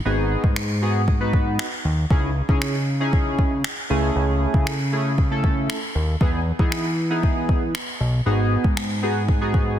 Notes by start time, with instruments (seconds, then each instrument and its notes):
0.05 analog synth bass G#1, analog polysynth B3 D#4 F#4 G#4
0.44 analog synth bass G#2, kick
0.56 finger snap
0.82 analog polysynth B3 D#4 F#4 G#4
1.08 kick
1.20 analog polysynth B3 D#4 F#4 B4
1.33 kick
1.59 finger snap
1.85 analog synth bass D#2
2.10 analog synth bass C#2, analog polysynth C#4 D#4 E4 G#4, kick
2.49 analog synth bass C#3, analog polysynth C#4 D#4 E4 G#4, kick
2.62 finger snap
3.00 analog polysynth C#4 D#4 E4 G#4
3.13 kick
3.39 kick
3.64 finger snap
3.90 analog synth bass C#2, analog polysynth A3 C#4 E4 G#4
4.16 analog synth bass C#2
4.54 analog synth bass C#3, kick
4.67 finger snap
4.92 analog polysynth A3 C#4 E4 G#4
5.18 kick
5.31 analog polysynth A3 C#4 E4 A4
5.44 kick
5.70 finger snap
5.95 analog synth bass D#2
6.21 analog synth bass E2, analog polysynth B3 D#4 E4 G#4, kick
6.59 analog synth bass E3, analog polysynth B3 D#4 E4 G#4, kick
6.72 finger snap
7.10 analog polysynth B3 D#4 E4 G#4
7.23 kick
7.49 kick
7.75 finger snap
8.00 analog synth bass B1
8.26 analog synth bass G#1, analog polysynth B3 D#4 F#4 G#4
8.64 analog synth bass G#2, kick
8.77 finger snap
9.02 analog polysynth B3 D#4 F#4 G#4
9.29 kick
9.41 analog polysynth B3 D#4 F#4 G#4
9.54 kick